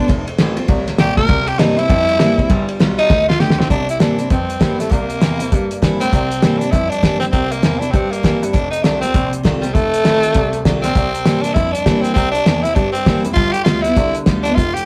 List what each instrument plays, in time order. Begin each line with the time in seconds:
Already playing: tenor saxophone D4
0.08 grand piano F1, steel-string acoustic guitar F2, kick, snare, ride
0.28 grand piano F1, ride
0.39 grand piano A1, steel-string acoustic guitar D#3 A3 C4 F4, snare, ride
0.56 grand piano A1, steel-string acoustic guitar C4 F4, ride
0.68 grand piano C2, steel-string acoustic guitar A2, kick, ride
0.88 grand piano C2, snare, ride
0.98 grand piano C2, steel-string acoustic guitar A#2, tenor saxophone G4, snare, ride
1.17 grand piano D2, tenor saxophone A#4, kick, ride
1.28 grand piano C2, steel-string acoustic guitar C3, kick, snare, ride
1.47 grand piano C2, tenor saxophone G4, ride
1.58 grand piano G2, steel-string acoustic guitar E3 A#3 C4 E4, tenor saxophone D#4, snare, ride
1.77 grand piano G2, steel-string acoustic guitar C4 E4, tenor saxophone E4, ride
1.89 grand piano F2, steel-string acoustic guitar G2, kick, ride
2.08 grand piano F2, ride
2.19 grand piano G2, steel-string acoustic guitar E3 A#3 C4 E4, snare, ride
2.38 grand piano G2, steel-string acoustic guitar C4 E4, kick, ride
2.50 grand piano G1, steel-string acoustic guitar G3, kick, snare, ride
2.68 grand piano G1, ride
2.80 grand piano B1, steel-string acoustic guitar G3 B3 F4, snare, ride
2.98 grand piano B1, tenor saxophone D#4, ride
3.10 grand piano D2, steel-string acoustic guitar A2, kick, snare
3.29 grand piano D2, tenor saxophone F4, snare
3.40 grand piano D2, steel-string acoustic guitar D3, tenor saxophone G4, snare
3.50 snare
3.59 grand piano B1, tenor saxophone C4, snare
3.70 grand piano C2, steel-string acoustic guitar C3, tenor saxophone D4, kick, closed hi-hat
3.89 grand piano C2, tenor saxophone E4, closed hi-hat
3.99 grand piano G2, steel-string acoustic guitar E3 A#3 C4 E4, tenor saxophone D4, snare, closed hi-hat
4.17 grand piano G2, steel-string acoustic guitar C4 E4, closed hi-hat
4.30 grand piano F2, steel-string acoustic guitar G2, tenor saxophone C4, kick, closed hi-hat
4.49 grand piano F2, closed hi-hat
4.60 grand piano G2, steel-string acoustic guitar E3 A#3 C4 E4, kick, snare, closed hi-hat
4.78 grand piano G2, tenor saxophone A3, steel-string acoustic guitar C4 E4, snare, closed hi-hat
4.89 grand piano C2, steel-string acoustic guitar C3, tenor saxophone A#3, kick, closed hi-hat
5.10 grand piano C2, closed hi-hat
5.21 grand piano E2, steel-string acoustic guitar E3 A#3 C4 E4, snare, closed hi-hat
5.40 grand piano E2, steel-string acoustic guitar C4 E4, closed hi-hat
5.52 grand piano G2, steel-string acoustic guitar G2, kick, closed hi-hat
5.71 grand piano G2, closed hi-hat
5.82 grand piano G2, steel-string acoustic guitar E3 A#3 C4 E4, kick, snare, closed hi-hat
6.00 grand piano A2, tenor saxophone C4, steel-string acoustic guitar C4 E4, closed hi-hat
6.13 grand piano C2, steel-string acoustic guitar C3, kick, closed hi-hat
6.31 grand piano C2, closed hi-hat
6.42 grand piano G2, steel-string acoustic guitar E3 A#3 C4 E4, snare, closed hi-hat
6.58 grand piano G2, tenor saxophone D4, steel-string acoustic guitar E4, closed hi-hat
6.63 steel-string acoustic guitar C4
6.71 grand piano F2, steel-string acoustic guitar G2, tenor saxophone E4, kick, closed hi-hat
6.89 grand piano F2, tenor saxophone D4, closed hi-hat
7.02 grand piano G2, steel-string acoustic guitar E3 A#3 C4 E4, kick, snare, closed hi-hat
7.20 grand piano G2, tenor saxophone C4, steel-string acoustic guitar C4 E4, snare, closed hi-hat
7.32 grand piano C2, steel-string acoustic guitar C3, tenor saxophone C4, kick, closed hi-hat
7.51 grand piano C2, tenor saxophone A#3, closed hi-hat
7.62 grand piano E2, steel-string acoustic guitar E3 A#3 C4 E4, snare, closed hi-hat
7.79 grand piano E2, steel-string acoustic guitar C4 E4, tenor saxophone D4, closed hi-hat
7.91 steel-string acoustic guitar G2, grand piano G2, tenor saxophone C4, kick, closed hi-hat
8.11 grand piano G2, tenor saxophone A#3, closed hi-hat
8.23 grand piano G2, steel-string acoustic guitar E3 A#3 C4 E4, kick, snare, closed hi-hat
8.42 grand piano G2, steel-string acoustic guitar C4 E4, closed hi-hat
8.53 grand piano F1, steel-string acoustic guitar F2, tenor saxophone D4, kick, closed hi-hat
8.70 grand piano F1, tenor saxophone D#4, closed hi-hat
8.83 grand piano C2, steel-string acoustic guitar D#3 A3 C4 F4, tenor saxophone D4, snare, closed hi-hat
9.01 grand piano C2, tenor saxophone C4, steel-string acoustic guitar F4, closed hi-hat
9.05 steel-string acoustic guitar C4
9.14 grand piano A#1, steel-string acoustic guitar C3, kick, closed hi-hat
9.33 grand piano A#1, closed hi-hat
9.43 grand piano C2, steel-string acoustic guitar D#3 A3 C4 F4, kick, snare, closed hi-hat
9.61 grand piano C2, tenor saxophone G3, steel-string acoustic guitar C4 F4, closed hi-hat
9.73 grand piano F1, steel-string acoustic guitar F2, tenor saxophone A3, kick, closed hi-hat
9.94 grand piano F1, closed hi-hat
10.04 grand piano A1, steel-string acoustic guitar D#3 A3 C4 F4, snare, closed hi-hat
10.23 grand piano A1, closed hi-hat
10.34 grand piano C2, steel-string acoustic guitar C3, kick, closed hi-hat
10.53 grand piano C2, closed hi-hat
10.65 grand piano C2, steel-string acoustic guitar D#3 A3 C4 F4, kick, snare, closed hi-hat
10.82 grand piano A#1, tenor saxophone C4, steel-string acoustic guitar F4, snare, closed hi-hat
10.87 steel-string acoustic guitar C4
10.95 grand piano C2, steel-string acoustic guitar C3, kick, closed hi-hat
11.15 grand piano C2, closed hi-hat
11.26 grand piano G2, steel-string acoustic guitar E3 A#3 C4 E4, snare, closed hi-hat
11.42 grand piano G2, tenor saxophone D4, closed hi-hat
11.54 grand piano F2, steel-string acoustic guitar G2, tenor saxophone E4, kick, closed hi-hat
11.72 grand piano F2, tenor saxophone D4, closed hi-hat
11.86 grand piano G2, steel-string acoustic guitar E3 A#3 C4 E4, kick, snare, closed hi-hat
12.01 grand piano G2, tenor saxophone C4, closed hi-hat
12.14 grand piano C2, steel-string acoustic guitar C3, tenor saxophone C4, kick, closed hi-hat
12.32 grand piano C2, tenor saxophone D4, closed hi-hat
12.46 grand piano E2, steel-string acoustic guitar E3 A#3 C4 E4, snare, closed hi-hat
12.62 grand piano E2, steel-string acoustic guitar C4 E4, tenor saxophone E4, closed hi-hat
12.74 grand piano G2, steel-string acoustic guitar G2, tenor saxophone D4, kick, closed hi-hat
12.92 grand piano G2, tenor saxophone C4, closed hi-hat
13.06 grand piano G2, steel-string acoustic guitar E3 A#3 C4 E4, kick, snare, closed hi-hat
13.25 grand piano F1, steel-string acoustic guitar C4 E4, closed hi-hat
13.34 grand piano G1, steel-string acoustic guitar G3, tenor saxophone F4, kick, closed hi-hat
13.52 grand piano G1, tenor saxophone G4, closed hi-hat
13.64 grand piano D2, steel-string acoustic guitar G3 B3 F4, tenor saxophone F4, snare, closed hi-hat
13.82 grand piano D2, tenor saxophone E4, steel-string acoustic guitar F4, closed hi-hat
13.87 steel-string acoustic guitar B3
13.97 grand piano C2, steel-string acoustic guitar D3, kick, closed hi-hat
14.14 grand piano C2, closed hi-hat
14.26 grand piano D2, steel-string acoustic guitar G3 B3 F4, kick, snare, closed hi-hat
14.43 grand piano D2, tenor saxophone D4, steel-string acoustic guitar F4, closed hi-hat
14.48 steel-string acoustic guitar B3
14.55 grand piano F1, steel-string acoustic guitar F2, tenor saxophone F4, kick, closed hi-hat
14.74 grand piano F1, tenor saxophone G4, closed hi-hat